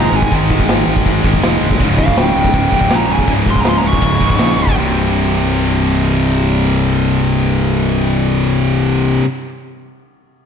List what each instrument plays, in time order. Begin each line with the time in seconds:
Already playing: distorted electric guitar G#2 D#3 G#3
0.00 lead electric guitar A#5
0.12 fingered electric bass G#1, lead electric guitar G#5
0.22 kick
0.31 fingered electric bass G#1, distorted electric guitar G#2 D#3 G#3, kick, ride bell
0.50 kick
0.60 kick
0.68 fingered electric bass G#1, snare, ride bell
0.87 fingered electric bass G#1
0.97 kick
1.05 fingered electric bass G#1, distorted electric guitar G#2 D#3 G#3, kick, ride bell
1.23 fingered electric bass G#1, distorted electric guitar G#2 D#3 G#3, kick
1.34 kick
1.41 fingered electric bass F1, distorted electric guitar G#2 D#3 G#3, snare, ride bell
1.61 fingered electric bass C1
1.71 kick
1.79 fingered electric bass C#1, distorted electric guitar C#2 G#2 C#3, kick, ride bell
1.99 lead electric guitar F5, kick
2.08 kick
2.17 fingered electric bass C#1, lead electric guitar G5, snare, ride bell
2.36 fingered electric bass C#1, lead electric guitar G5
2.45 kick
2.53 fingered electric bass C#1, distorted electric guitar C#2 G#2 C#3, lead electric guitar G5, kick, ride bell
2.70 fingered electric bass C#1, distorted electric guitar C#2 G#2 C#3, kick
2.75 lead electric guitar G5
2.82 kick
2.89 fingered electric bass A#1, distorted electric guitar C#2 G#2 C#3, snare, ride bell
2.95 lead electric guitar A#5
3.09 fingered electric bass C#1, lead electric guitar G#5
3.19 kick
3.27 fingered electric bass C#1, distorted electric guitar C#2 G#2 C#3, kick, ride bell
3.46 kick
3.51 lead electric guitar C6
3.56 kick
3.60 lead electric guitar A#5
3.65 fingered electric bass C#1, snare, ride bell
3.69 lead electric guitar C6
3.78 lead electric guitar A#5
3.84 fingered electric bass C#1, lead electric guitar C#6
3.93 kick
4.00 fingered electric bass C#1, distorted electric guitar C#2 G#2 C#3, kick, ride bell
4.20 fingered electric bass C#1, distorted electric guitar C#2 G#2 C#3, kick
4.30 kick
4.38 fingered electric bass A#1, distorted electric guitar C#2 G#2 C#3, snare, ride bell
4.59 fingered electric bass C#1
4.67 kick
4.75 fingered electric bass C1, distorted electric guitar C2 G2
4.80 distorted electric guitar C3